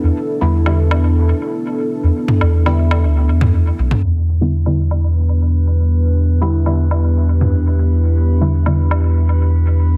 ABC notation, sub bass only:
X:1
M:4/4
L:1/16
Q:1/4=120
K:Em
V:1 name="Sub bass" clef=bass
E,, z2 E,,6- E,, z6 | E,, z2 E,,4- E,, D,,2 E,,3 z B,,, z | E,,16- | E,,16- |
E,,16 |]